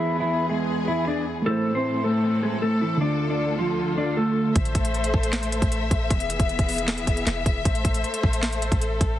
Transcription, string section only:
0, 0, Header, 1, 2, 480
1, 0, Start_track
1, 0, Key_signature, 0, "minor"
1, 0, Tempo, 387097
1, 1810, Time_signature, 4, 2, 24, 8
1, 11398, End_track
2, 0, Start_track
2, 0, Title_t, "String section"
2, 0, Program_c, 0, 48
2, 0, Note_on_c, 0, 40, 75
2, 0, Note_on_c, 0, 52, 68
2, 0, Note_on_c, 0, 59, 71
2, 0, Note_on_c, 0, 68, 84
2, 1772, Note_off_c, 0, 52, 0
2, 1791, Note_off_c, 0, 40, 0
2, 1791, Note_off_c, 0, 59, 0
2, 1791, Note_off_c, 0, 68, 0
2, 1809, Note_on_c, 0, 45, 78
2, 1809, Note_on_c, 0, 52, 70
2, 1809, Note_on_c, 0, 60, 71
2, 1809, Note_on_c, 0, 69, 86
2, 3710, Note_off_c, 0, 45, 0
2, 3710, Note_off_c, 0, 52, 0
2, 3710, Note_off_c, 0, 60, 0
2, 3730, Note_on_c, 0, 38, 80
2, 3730, Note_on_c, 0, 50, 71
2, 3730, Note_on_c, 0, 65, 71
2, 5611, Note_off_c, 0, 69, 0
2, 5631, Note_off_c, 0, 38, 0
2, 5631, Note_off_c, 0, 50, 0
2, 5631, Note_off_c, 0, 65, 0
2, 5650, Note_on_c, 0, 57, 77
2, 5650, Note_on_c, 0, 69, 72
2, 5651, Note_on_c, 0, 72, 71
2, 5651, Note_on_c, 0, 76, 90
2, 7551, Note_off_c, 0, 57, 0
2, 7551, Note_off_c, 0, 69, 0
2, 7551, Note_off_c, 0, 72, 0
2, 7569, Note_on_c, 0, 52, 80
2, 7569, Note_on_c, 0, 68, 74
2, 7570, Note_on_c, 0, 59, 74
2, 9471, Note_off_c, 0, 52, 0
2, 9471, Note_off_c, 0, 59, 0
2, 9471, Note_off_c, 0, 68, 0
2, 9490, Note_on_c, 0, 57, 77
2, 9490, Note_on_c, 0, 69, 72
2, 9490, Note_on_c, 0, 72, 72
2, 11361, Note_off_c, 0, 76, 0
2, 11391, Note_off_c, 0, 57, 0
2, 11391, Note_off_c, 0, 72, 0
2, 11398, Note_off_c, 0, 69, 0
2, 11398, End_track
0, 0, End_of_file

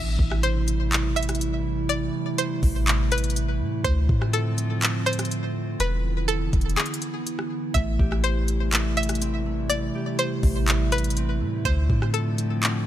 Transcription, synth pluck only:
0, 0, Header, 1, 2, 480
1, 0, Start_track
1, 0, Key_signature, 0, "minor"
1, 0, Tempo, 487805
1, 1866, Time_signature, 4, 2, 24, 8
1, 12661, End_track
2, 0, Start_track
2, 0, Title_t, "Synth pluck"
2, 0, Program_c, 0, 84
2, 0, Note_on_c, 0, 76, 107
2, 392, Note_off_c, 0, 76, 0
2, 425, Note_on_c, 0, 72, 82
2, 1106, Note_off_c, 0, 72, 0
2, 1143, Note_on_c, 0, 76, 84
2, 1373, Note_off_c, 0, 76, 0
2, 1862, Note_on_c, 0, 74, 96
2, 2315, Note_off_c, 0, 74, 0
2, 2346, Note_on_c, 0, 72, 81
2, 3027, Note_off_c, 0, 72, 0
2, 3068, Note_on_c, 0, 71, 89
2, 3295, Note_off_c, 0, 71, 0
2, 3783, Note_on_c, 0, 72, 102
2, 4236, Note_off_c, 0, 72, 0
2, 4264, Note_on_c, 0, 69, 88
2, 4946, Note_off_c, 0, 69, 0
2, 4981, Note_on_c, 0, 72, 82
2, 5211, Note_off_c, 0, 72, 0
2, 5710, Note_on_c, 0, 71, 109
2, 6160, Note_off_c, 0, 71, 0
2, 6179, Note_on_c, 0, 69, 92
2, 6634, Note_off_c, 0, 69, 0
2, 6663, Note_on_c, 0, 68, 97
2, 7115, Note_off_c, 0, 68, 0
2, 7618, Note_on_c, 0, 76, 106
2, 8073, Note_off_c, 0, 76, 0
2, 8105, Note_on_c, 0, 72, 82
2, 8786, Note_off_c, 0, 72, 0
2, 8827, Note_on_c, 0, 76, 81
2, 9055, Note_off_c, 0, 76, 0
2, 9540, Note_on_c, 0, 74, 102
2, 9994, Note_off_c, 0, 74, 0
2, 10026, Note_on_c, 0, 72, 83
2, 10707, Note_off_c, 0, 72, 0
2, 10748, Note_on_c, 0, 71, 91
2, 10975, Note_off_c, 0, 71, 0
2, 11466, Note_on_c, 0, 72, 105
2, 11917, Note_off_c, 0, 72, 0
2, 11943, Note_on_c, 0, 69, 84
2, 12625, Note_off_c, 0, 69, 0
2, 12661, End_track
0, 0, End_of_file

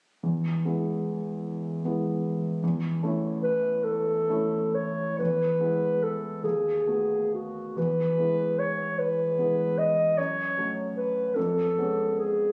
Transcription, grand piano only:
0, 0, Header, 1, 2, 480
1, 0, Start_track
1, 0, Key_signature, 4, "major"
1, 0, Tempo, 829876
1, 131, Time_signature, 6, 3, 24, 8
1, 608, Tempo, 792602
1, 2048, Tempo, 882353
1, 3008, Tempo, 837989
1, 3968, Tempo, 894188
1, 4448, Tempo, 801068
1, 6848, Tempo, 855920
1, 7269, End_track
2, 0, Start_track
2, 0, Title_t, "Grand piano"
2, 0, Program_c, 0, 0
2, 134, Note_on_c, 0, 40, 32
2, 245, Control_c, 0, 64, 127
2, 366, Note_off_c, 0, 40, 0
2, 377, Note_on_c, 0, 56, 25
2, 379, Note_on_c, 0, 59, 23
2, 380, Note_on_c, 0, 64, 24
2, 1063, Note_off_c, 0, 56, 0
2, 1064, Note_off_c, 0, 59, 0
2, 1065, Note_off_c, 0, 64, 0
2, 1090, Note_on_c, 0, 56, 27
2, 1093, Note_on_c, 0, 59, 27
2, 1097, Note_on_c, 0, 64, 28
2, 1539, Note_off_c, 0, 56, 0
2, 1540, Note_off_c, 0, 59, 0
2, 1542, Note_off_c, 0, 64, 0
2, 1566, Note_on_c, 0, 40, 42
2, 1570, Control_c, 0, 64, 0
2, 1655, Control_c, 0, 64, 127
2, 1798, Note_off_c, 0, 40, 0
2, 1807, Note_on_c, 0, 57, 31
2, 1809, Note_on_c, 0, 61, 32
2, 1812, Note_on_c, 0, 64, 33
2, 2497, Note_off_c, 0, 57, 0
2, 2498, Note_off_c, 0, 61, 0
2, 2499, Note_off_c, 0, 64, 0
2, 2519, Note_on_c, 0, 57, 34
2, 2521, Note_on_c, 0, 61, 36
2, 2523, Note_on_c, 0, 64, 38
2, 2988, Note_off_c, 0, 57, 0
2, 2989, Note_off_c, 0, 61, 0
2, 2990, Note_off_c, 0, 64, 0
2, 3008, Note_on_c, 0, 40, 38
2, 3020, Control_c, 0, 64, 0
2, 3126, Control_c, 0, 64, 127
2, 3236, Note_off_c, 0, 40, 0
2, 3242, Note_on_c, 0, 56, 25
2, 3245, Note_on_c, 0, 59, 26
2, 3248, Note_on_c, 0, 64, 28
2, 3694, Note_off_c, 0, 56, 0
2, 3696, Note_off_c, 0, 59, 0
2, 3697, Note_off_c, 0, 64, 0
2, 3719, Note_on_c, 0, 39, 37
2, 3727, Control_c, 0, 64, 0
2, 3848, Control_c, 0, 64, 127
2, 3961, Note_off_c, 0, 39, 0
2, 3968, Note_on_c, 0, 57, 28
2, 3969, Note_on_c, 0, 59, 28
2, 3973, Note_on_c, 0, 66, 29
2, 4426, Note_off_c, 0, 57, 0
2, 4427, Note_off_c, 0, 59, 0
2, 4429, Note_off_c, 0, 66, 0
2, 4448, Note_on_c, 0, 40, 36
2, 4457, Control_c, 0, 64, 0
2, 4579, Control_c, 0, 64, 127
2, 4690, Note_off_c, 0, 40, 0
2, 4699, Note_on_c, 0, 56, 27
2, 4703, Note_on_c, 0, 59, 29
2, 4704, Note_on_c, 0, 64, 30
2, 5393, Note_off_c, 0, 56, 0
2, 5395, Note_off_c, 0, 59, 0
2, 5396, Note_off_c, 0, 64, 0
2, 5419, Note_on_c, 0, 56, 29
2, 5420, Note_on_c, 0, 59, 30
2, 5424, Note_on_c, 0, 64, 33
2, 5870, Note_off_c, 0, 56, 0
2, 5870, Note_off_c, 0, 59, 0
2, 5873, Note_off_c, 0, 64, 0
2, 5897, Note_on_c, 0, 42, 45
2, 5902, Control_c, 0, 64, 0
2, 6018, Control_c, 0, 64, 127
2, 6127, Note_off_c, 0, 42, 0
2, 6132, Note_on_c, 0, 54, 32
2, 6137, Note_on_c, 0, 57, 27
2, 6139, Note_on_c, 0, 61, 32
2, 6579, Note_off_c, 0, 54, 0
2, 6582, Note_off_c, 0, 57, 0
2, 6583, Note_off_c, 0, 61, 0
2, 6602, Note_on_c, 0, 41, 41
2, 6613, Control_c, 0, 64, 0
2, 6722, Control_c, 0, 64, 127
2, 6840, Note_off_c, 0, 41, 0
2, 6854, Note_on_c, 0, 56, 32
2, 6856, Note_on_c, 0, 59, 31
2, 6856, Note_on_c, 0, 61, 35
2, 7269, Note_off_c, 0, 56, 0
2, 7269, Note_off_c, 0, 59, 0
2, 7269, Note_off_c, 0, 61, 0
2, 7269, End_track
0, 0, End_of_file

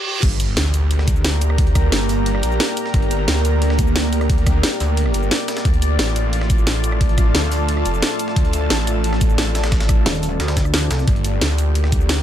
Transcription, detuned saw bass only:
0, 0, Header, 1, 2, 480
1, 0, Start_track
1, 0, Key_signature, -2, "minor"
1, 0, Tempo, 338983
1, 324, Time_signature, 4, 2, 24, 8
1, 17313, End_track
2, 0, Start_track
2, 0, Title_t, "Detuned saw bass"
2, 0, Program_c, 0, 39
2, 325, Note_on_c, 0, 31, 98
2, 785, Note_off_c, 0, 31, 0
2, 804, Note_on_c, 0, 38, 97
2, 2705, Note_off_c, 0, 38, 0
2, 2723, Note_on_c, 0, 31, 100
2, 3424, Note_off_c, 0, 31, 0
2, 3444, Note_on_c, 0, 34, 96
2, 3665, Note_off_c, 0, 34, 0
2, 4164, Note_on_c, 0, 31, 99
2, 4625, Note_off_c, 0, 31, 0
2, 4642, Note_on_c, 0, 38, 101
2, 6544, Note_off_c, 0, 38, 0
2, 6803, Note_on_c, 0, 38, 98
2, 7264, Note_off_c, 0, 38, 0
2, 7283, Note_on_c, 0, 31, 98
2, 7504, Note_off_c, 0, 31, 0
2, 8003, Note_on_c, 0, 38, 98
2, 8464, Note_off_c, 0, 38, 0
2, 8483, Note_on_c, 0, 33, 101
2, 10385, Note_off_c, 0, 33, 0
2, 10403, Note_on_c, 0, 38, 100
2, 11105, Note_off_c, 0, 38, 0
2, 11123, Note_on_c, 0, 29, 100
2, 11344, Note_off_c, 0, 29, 0
2, 11843, Note_on_c, 0, 38, 97
2, 12304, Note_off_c, 0, 38, 0
2, 12324, Note_on_c, 0, 33, 100
2, 14225, Note_off_c, 0, 33, 0
2, 15683, Note_on_c, 0, 31, 97
2, 16144, Note_off_c, 0, 31, 0
2, 16164, Note_on_c, 0, 38, 101
2, 17313, Note_off_c, 0, 38, 0
2, 17313, End_track
0, 0, End_of_file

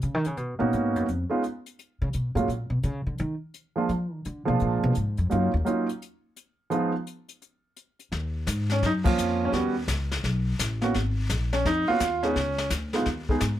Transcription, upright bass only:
0, 0, Header, 1, 3, 480
1, 0, Start_track
1, 0, Key_signature, -6, "minor"
1, 0, Tempo, 352319
1, 1475, Time_signature, 4, 2, 24, 8
1, 18525, End_track
2, 0, Start_track
2, 0, Title_t, "Upright bass"
2, 0, Program_c, 0, 32
2, 39, Note_on_c, 0, 49, 79
2, 197, Note_off_c, 0, 49, 0
2, 197, Note_on_c, 0, 51, 87
2, 356, Note_off_c, 0, 51, 0
2, 356, Note_on_c, 0, 49, 76
2, 504, Note_off_c, 0, 49, 0
2, 504, Note_on_c, 0, 47, 80
2, 810, Note_off_c, 0, 47, 0
2, 816, Note_on_c, 0, 46, 77
2, 985, Note_off_c, 0, 46, 0
2, 999, Note_on_c, 0, 44, 65
2, 1303, Note_off_c, 0, 44, 0
2, 1303, Note_on_c, 0, 42, 74
2, 1469, Note_off_c, 0, 42, 0
2, 1480, Note_on_c, 0, 41, 72
2, 1664, Note_off_c, 0, 41, 0
2, 2746, Note_on_c, 0, 49, 90
2, 2910, Note_off_c, 0, 49, 0
2, 2918, Note_on_c, 0, 47, 75
2, 3197, Note_off_c, 0, 47, 0
2, 3205, Note_on_c, 0, 45, 84
2, 3372, Note_off_c, 0, 45, 0
2, 3380, Note_on_c, 0, 46, 69
2, 3669, Note_off_c, 0, 46, 0
2, 3678, Note_on_c, 0, 47, 89
2, 3855, Note_off_c, 0, 47, 0
2, 3863, Note_on_c, 0, 49, 88
2, 4168, Note_off_c, 0, 49, 0
2, 4176, Note_on_c, 0, 50, 80
2, 4344, Note_off_c, 0, 50, 0
2, 4356, Note_on_c, 0, 51, 99
2, 4540, Note_off_c, 0, 51, 0
2, 5300, Note_on_c, 0, 53, 89
2, 5610, Note_off_c, 0, 53, 0
2, 5610, Note_on_c, 0, 51, 87
2, 5781, Note_off_c, 0, 51, 0
2, 5800, Note_on_c, 0, 50, 75
2, 6096, Note_off_c, 0, 50, 0
2, 6103, Note_on_c, 0, 47, 87
2, 6267, Note_off_c, 0, 47, 0
2, 6289, Note_on_c, 0, 46, 85
2, 6580, Note_off_c, 0, 46, 0
2, 6588, Note_on_c, 0, 47, 108
2, 6749, Note_off_c, 0, 47, 0
2, 6771, Note_on_c, 0, 44, 70
2, 7052, Note_off_c, 0, 44, 0
2, 7060, Note_on_c, 0, 41, 84
2, 7225, Note_off_c, 0, 41, 0
2, 7250, Note_on_c, 0, 42, 94
2, 7534, Note_off_c, 0, 42, 0
2, 7543, Note_on_c, 0, 39, 89
2, 7643, Note_off_c, 0, 39, 0
2, 11058, Note_on_c, 0, 39, 84
2, 11528, Note_off_c, 0, 39, 0
2, 11534, Note_on_c, 0, 44, 87
2, 12005, Note_off_c, 0, 44, 0
2, 12021, Note_on_c, 0, 42, 76
2, 12489, Note_off_c, 0, 42, 0
2, 12500, Note_on_c, 0, 41, 78
2, 12969, Note_off_c, 0, 41, 0
2, 12978, Note_on_c, 0, 39, 81
2, 13448, Note_off_c, 0, 39, 0
2, 13455, Note_on_c, 0, 37, 83
2, 13928, Note_off_c, 0, 37, 0
2, 13944, Note_on_c, 0, 35, 80
2, 14412, Note_off_c, 0, 35, 0
2, 14432, Note_on_c, 0, 33, 77
2, 14897, Note_off_c, 0, 33, 0
2, 14911, Note_on_c, 0, 32, 75
2, 15376, Note_off_c, 0, 32, 0
2, 15389, Note_on_c, 0, 34, 85
2, 15856, Note_off_c, 0, 34, 0
2, 15874, Note_on_c, 0, 41, 83
2, 16161, Note_off_c, 0, 41, 0
2, 16352, Note_on_c, 0, 39, 78
2, 16818, Note_off_c, 0, 39, 0
2, 16834, Note_on_c, 0, 37, 75
2, 17299, Note_off_c, 0, 37, 0
2, 17311, Note_on_c, 0, 38, 87
2, 17778, Note_off_c, 0, 38, 0
2, 17794, Note_on_c, 0, 39, 83
2, 18260, Note_off_c, 0, 39, 0
2, 18269, Note_on_c, 0, 44, 85
2, 18525, Note_off_c, 0, 44, 0
2, 18525, End_track
3, 0, Start_track
3, 0, Title_t, "Muted upright bass strokes"
3, 16205, Note_on_c, 9, 29, 37
3, 16341, Note_off_c, 9, 29, 0
3, 18525, End_track
0, 0, End_of_file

